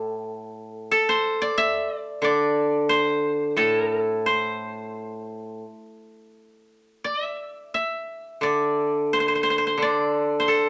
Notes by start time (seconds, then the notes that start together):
Already playing: A2 G4 A4 C5 D5 E5 G5 A5
0.91 A4
1.09 C5
1.42 D5
1.58 E5
1.98 D5
2.22 D3 D5
2.89 C5
3.57 A2 A4
4.26 C5
7.04 D5
7.24 E5
7.74 E5
8.41 D3 D5
9.13 C5
9.20 C5
9.28 C5
9.35 C5
9.43 C5
9.50 C5
9.58 C5
9.67 C5
9.78 D3
9.82 D5
10.40 C5
10.48 A4